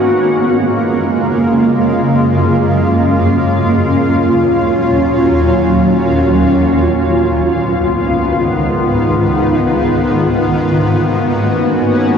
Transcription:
0, 0, Header, 1, 2, 480
1, 0, Start_track
1, 0, Key_signature, 6, "major"
1, 0, Tempo, 500000
1, 11692, End_track
2, 0, Start_track
2, 0, Title_t, "Ambient pad"
2, 0, Program_c, 0, 92
2, 56, Note_on_c, 0, 42, 80
2, 57, Note_on_c, 0, 49, 73
2, 57, Note_on_c, 0, 56, 74
2, 57, Note_on_c, 0, 58, 71
2, 57, Note_on_c, 0, 65, 86
2, 3362, Note_off_c, 0, 42, 0
2, 3362, Note_off_c, 0, 49, 0
2, 3362, Note_off_c, 0, 56, 0
2, 3362, Note_off_c, 0, 58, 0
2, 3396, Note_on_c, 0, 46, 74
2, 3396, Note_on_c, 0, 54, 74
2, 3397, Note_on_c, 0, 61, 75
2, 3398, Note_on_c, 0, 39, 80
2, 6701, Note_off_c, 0, 46, 0
2, 6701, Note_off_c, 0, 54, 0
2, 6702, Note_off_c, 0, 39, 0
2, 6702, Note_off_c, 0, 61, 0
2, 6735, Note_on_c, 0, 44, 72
2, 6736, Note_on_c, 0, 37, 82
2, 6736, Note_on_c, 0, 51, 75
2, 6736, Note_on_c, 0, 59, 72
2, 10035, Note_off_c, 0, 65, 0
2, 10040, Note_off_c, 0, 44, 0
2, 10041, Note_off_c, 0, 37, 0
2, 10041, Note_off_c, 0, 59, 0
2, 10072, Note_on_c, 0, 44, 80
2, 10073, Note_on_c, 0, 58, 77
2, 10073, Note_on_c, 0, 59, 75
2, 10073, Note_on_c, 0, 61, 73
2, 10073, Note_on_c, 0, 66, 91
2, 11692, Note_off_c, 0, 44, 0
2, 11692, Note_off_c, 0, 51, 0
2, 11692, Note_off_c, 0, 58, 0
2, 11692, Note_off_c, 0, 59, 0
2, 11692, Note_off_c, 0, 61, 0
2, 11692, Note_off_c, 0, 66, 0
2, 11692, End_track
0, 0, End_of_file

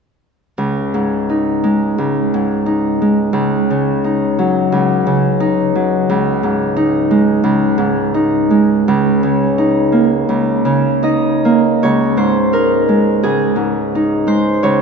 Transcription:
0, 0, Header, 1, 2, 480
1, 0, Start_track
1, 0, Tempo, 713436
1, 386, Time_signature, 4, 2, 24, 8
1, 1342, Tempo, 681044
1, 5182, Tempo, 709220
1, 7102, Tempo, 751880
1, 7582, Tempo, 804290
1, 8062, Tempo, 702576
1, 10099, End_track
2, 0, Start_track
2, 0, Title_t, "Harp"
2, 0, Program_c, 0, 46
2, 389, Note_on_c, 0, 37, 41
2, 633, Note_on_c, 0, 44, 31
2, 871, Note_on_c, 0, 63, 32
2, 1101, Note_on_c, 0, 56, 31
2, 1326, Note_off_c, 0, 37, 0
2, 1334, Note_on_c, 0, 37, 35
2, 1576, Note_off_c, 0, 44, 0
2, 1585, Note_on_c, 0, 44, 34
2, 1804, Note_off_c, 0, 63, 0
2, 1812, Note_on_c, 0, 63, 33
2, 2054, Note_off_c, 0, 56, 0
2, 2062, Note_on_c, 0, 56, 33
2, 2274, Note_off_c, 0, 37, 0
2, 2282, Note_on_c, 0, 37, 44
2, 2322, Note_off_c, 0, 44, 0
2, 2323, Note_off_c, 0, 56, 0
2, 2547, Note_on_c, 0, 49, 35
2, 2777, Note_off_c, 0, 63, 0
2, 2786, Note_on_c, 0, 63, 33
2, 3028, Note_on_c, 0, 54, 35
2, 3256, Note_off_c, 0, 37, 0
2, 3265, Note_on_c, 0, 37, 37
2, 3498, Note_off_c, 0, 49, 0
2, 3506, Note_on_c, 0, 49, 38
2, 3736, Note_off_c, 0, 63, 0
2, 3744, Note_on_c, 0, 63, 40
2, 3983, Note_off_c, 0, 54, 0
2, 3991, Note_on_c, 0, 54, 35
2, 4223, Note_off_c, 0, 37, 0
2, 4232, Note_on_c, 0, 37, 49
2, 4244, Note_off_c, 0, 49, 0
2, 4247, Note_off_c, 0, 54, 0
2, 4470, Note_on_c, 0, 44, 38
2, 4695, Note_off_c, 0, 63, 0
2, 4704, Note_on_c, 0, 63, 38
2, 4946, Note_on_c, 0, 56, 39
2, 5169, Note_off_c, 0, 37, 0
2, 5177, Note_on_c, 0, 37, 45
2, 5400, Note_off_c, 0, 44, 0
2, 5408, Note_on_c, 0, 44, 39
2, 5648, Note_off_c, 0, 63, 0
2, 5656, Note_on_c, 0, 63, 39
2, 5893, Note_off_c, 0, 56, 0
2, 5901, Note_on_c, 0, 56, 36
2, 6146, Note_off_c, 0, 37, 0
2, 6154, Note_on_c, 0, 37, 47
2, 6157, Note_off_c, 0, 44, 0
2, 6162, Note_off_c, 0, 56, 0
2, 6391, Note_on_c, 0, 49, 39
2, 6621, Note_off_c, 0, 63, 0
2, 6629, Note_on_c, 0, 63, 34
2, 6860, Note_on_c, 0, 58, 35
2, 7099, Note_off_c, 0, 37, 0
2, 7107, Note_on_c, 0, 37, 35
2, 7331, Note_off_c, 0, 49, 0
2, 7338, Note_on_c, 0, 49, 37
2, 7573, Note_off_c, 0, 63, 0
2, 7579, Note_on_c, 0, 63, 39
2, 7585, Note_on_c, 0, 75, 49
2, 7824, Note_off_c, 0, 58, 0
2, 7831, Note_on_c, 0, 58, 33
2, 8055, Note_off_c, 0, 37, 0
2, 8058, Note_on_c, 0, 73, 48
2, 8062, Note_on_c, 0, 37, 36
2, 8082, Note_off_c, 0, 49, 0
2, 8082, Note_off_c, 0, 58, 0
2, 8290, Note_on_c, 0, 44, 32
2, 8294, Note_on_c, 0, 72, 51
2, 8528, Note_off_c, 0, 63, 0
2, 8534, Note_on_c, 0, 63, 29
2, 8538, Note_on_c, 0, 70, 41
2, 8709, Note_off_c, 0, 72, 0
2, 8780, Note_on_c, 0, 56, 32
2, 9014, Note_off_c, 0, 37, 0
2, 9017, Note_on_c, 0, 68, 49
2, 9023, Note_on_c, 0, 37, 33
2, 9231, Note_off_c, 0, 44, 0
2, 9239, Note_on_c, 0, 44, 31
2, 9355, Note_off_c, 0, 70, 0
2, 9499, Note_off_c, 0, 63, 0
2, 9508, Note_on_c, 0, 63, 34
2, 9715, Note_off_c, 0, 56, 0
2, 9723, Note_on_c, 0, 56, 33
2, 9729, Note_on_c, 0, 72, 47
2, 9962, Note_off_c, 0, 73, 0
2, 9967, Note_off_c, 0, 37, 0
2, 9970, Note_on_c, 0, 73, 43
2, 9976, Note_on_c, 0, 37, 37
2, 9985, Note_off_c, 0, 44, 0
2, 9990, Note_off_c, 0, 56, 0
2, 9992, Note_off_c, 0, 68, 0
2, 9999, Note_off_c, 0, 75, 0
2, 10001, Note_off_c, 0, 63, 0
2, 10099, Note_off_c, 0, 37, 0
2, 10099, Note_off_c, 0, 72, 0
2, 10099, Note_off_c, 0, 73, 0
2, 10099, End_track
0, 0, End_of_file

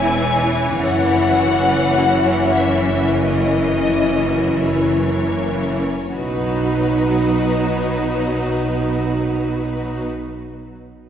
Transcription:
0, 0, Header, 1, 6, 480
1, 0, Start_track
1, 0, Key_signature, 5, "major"
1, 0, Tempo, 1181102
1, 301, Time_signature, 4, 2, 24, 8
1, 784, Tempo, 1279318
1, 1264, Tempo, 1408451
1, 1744, Tempo, 1538462
1, 2224, Tempo, 1438849
1, 2704, Tempo, 1481481
1, 3838, End_track
2, 0, Start_track
2, 0, Title_t, "Violin section"
2, 0, Program_c, 0, 48
2, 0, Note_on_c, 0, 80, 96
2, 289, Note_off_c, 0, 80, 0
2, 304, Note_on_c, 0, 78, 103
2, 1021, Note_off_c, 0, 78, 0
2, 1021, Note_on_c, 0, 76, 77
2, 1263, Note_on_c, 0, 75, 79
2, 1264, Note_off_c, 0, 76, 0
2, 1743, Note_off_c, 0, 75, 0
2, 1744, Note_on_c, 0, 73, 66
2, 2224, Note_off_c, 0, 73, 0
2, 2225, Note_on_c, 0, 71, 67
2, 3496, Note_off_c, 0, 71, 0
2, 3838, End_track
3, 0, Start_track
3, 0, Title_t, "Violin section"
3, 0, Program_c, 1, 48
3, 0, Note_on_c, 1, 61, 56
3, 0, Note_on_c, 1, 73, 61
3, 68, Note_off_c, 1, 61, 0
3, 70, Note_on_c, 1, 56, 54
3, 186, Note_off_c, 1, 56, 0
3, 190, Note_on_c, 1, 61, 51
3, 302, Note_off_c, 1, 61, 0
3, 306, Note_on_c, 1, 61, 58
3, 414, Note_off_c, 1, 61, 0
3, 440, Note_on_c, 1, 64, 52
3, 549, Note_off_c, 1, 64, 0
3, 554, Note_on_c, 1, 66, 54
3, 668, Note_off_c, 1, 66, 0
3, 672, Note_on_c, 1, 71, 51
3, 790, Note_off_c, 1, 71, 0
3, 797, Note_on_c, 1, 66, 51
3, 907, Note_off_c, 1, 66, 0
3, 916, Note_on_c, 1, 64, 50
3, 1026, Note_on_c, 1, 61, 49
3, 1028, Note_off_c, 1, 64, 0
3, 1144, Note_off_c, 1, 61, 0
3, 1152, Note_on_c, 1, 64, 49
3, 1267, Note_off_c, 1, 73, 0
3, 1269, Note_off_c, 1, 64, 0
3, 1269, Note_on_c, 1, 58, 54
3, 1269, Note_on_c, 1, 70, 49
3, 1373, Note_off_c, 1, 58, 0
3, 1376, Note_on_c, 1, 61, 48
3, 1492, Note_on_c, 1, 64, 49
3, 1495, Note_off_c, 1, 61, 0
3, 1616, Note_off_c, 1, 64, 0
3, 1620, Note_on_c, 1, 66, 51
3, 1742, Note_on_c, 1, 64, 46
3, 1745, Note_off_c, 1, 66, 0
3, 1863, Note_off_c, 1, 64, 0
3, 1865, Note_on_c, 1, 61, 44
3, 1988, Note_on_c, 1, 58, 45
3, 1989, Note_off_c, 1, 61, 0
3, 2111, Note_off_c, 1, 58, 0
3, 2116, Note_on_c, 1, 61, 46
3, 2129, Note_off_c, 1, 70, 0
3, 2225, Note_on_c, 1, 66, 51
3, 2226, Note_on_c, 1, 71, 55
3, 2227, Note_off_c, 1, 61, 0
3, 3496, Note_off_c, 1, 66, 0
3, 3496, Note_off_c, 1, 71, 0
3, 3838, End_track
4, 0, Start_track
4, 0, Title_t, "Viola section"
4, 0, Program_c, 2, 48
4, 0, Note_on_c, 2, 52, 73
4, 0, Note_on_c, 2, 64, 68
4, 303, Note_on_c, 2, 61, 64
4, 304, Note_off_c, 2, 64, 0
4, 2127, Note_off_c, 2, 61, 0
4, 2128, Note_off_c, 2, 52, 0
4, 2223, Note_on_c, 2, 54, 53
4, 2225, Note_on_c, 2, 63, 55
4, 3494, Note_off_c, 2, 54, 0
4, 3496, Note_off_c, 2, 63, 0
4, 3838, End_track
5, 0, Start_track
5, 0, Title_t, "Cello section"
5, 0, Program_c, 3, 48
5, 0, Note_on_c, 3, 40, 70
5, 300, Note_on_c, 3, 42, 66
5, 301, Note_off_c, 3, 40, 0
5, 2126, Note_off_c, 3, 42, 0
5, 2221, Note_on_c, 3, 47, 54
5, 3492, Note_off_c, 3, 47, 0
5, 3838, End_track
6, 0, Start_track
6, 0, Title_t, "Double bass section"
6, 0, Program_c, 4, 48
6, 0, Note_on_c, 4, 28, 65
6, 303, Note_off_c, 4, 28, 0
6, 305, Note_on_c, 4, 30, 69
6, 2128, Note_off_c, 4, 30, 0
6, 2224, Note_on_c, 4, 35, 60
6, 3495, Note_off_c, 4, 35, 0
6, 3838, End_track
0, 0, End_of_file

